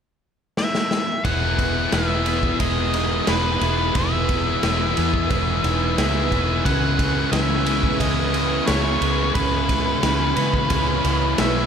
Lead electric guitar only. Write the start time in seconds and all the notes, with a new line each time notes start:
0.58 E5
1.25 F#5
1.94 E5
2.60 D#5
3.29 B4
3.96 E5
5.98 E5
6.65 F#5
7.32 E5
8.00 D#5
8.67 C#5
9.34 B4
11.39 E5